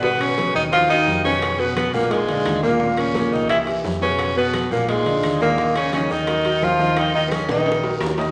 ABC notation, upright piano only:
X:1
M:4/4
L:1/8
Q:1/4=173
K:Ebm
V:1 name="Upright piano"
[C,Cc]2 [C,Cc]2 [E,EG] [E,EG]2 [C,Cc]- | [C,Cc] [C,Cc]2 [B,,B,B]2 [=D,=DF]2 [B,,B,B] | [B,,B,B]2 [B,,B,B]2 [=E,=E=G] [E,EG]2 [C,Cc]- | [C,Cc] [C,Cc]2 [B,,B,B]2 [=D,=DF]2 [E,Ee] |
[E,Ee]2 [E,Ee]2 [G,GB] [G,GB]2 [E,Ee]- | [E,Ee] [E,Ee]2 [E,Ee]2 [G,GB]2 [E,Ee] |]